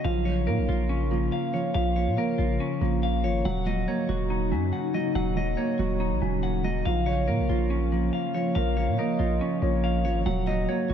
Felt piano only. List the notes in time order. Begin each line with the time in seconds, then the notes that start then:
0.04 F3
0.26 F3
0.47 A#3
0.68 F3
1.11 F3
1.54 F3
1.75 F3
1.96 F3
2.17 A#3
2.39 F3
2.81 F3
3.24 F3
3.45 F#3
3.66 F#3
3.88 A#3
4.09 F#3
4.51 F#3
4.94 F#3
5.15 F#3
5.37 F#3
5.58 A#3
5.79 F#3
6.22 F#3
6.64 F#3
6.85 F3
7.07 F3
7.28 A#3
7.49 F3
7.92 F3
8.34 F3
8.56 F3
8.77 F3
8.98 A#3
9.19 F3
9.62 F3
10.05 F3
10.26 F#3
10.47 F#3
10.68 A#3
10.90 F#3